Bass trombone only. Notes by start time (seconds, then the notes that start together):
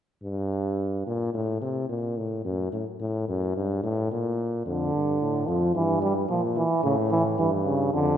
0.23 G2
1.06 A#2
1.34 A2
1.61 C3
1.89 A#2
2.17 A2
2.45 F#2
2.72 A2
3.00 A2
3.28 F#2
3.56 G2
3.83 A2
4.12 A#2
4.66 F2
4.93 G2
5.21 A2
5.48 F2
5.75 G2
6.30 A#2
6.84 A2
7.39 G2
7.94 F2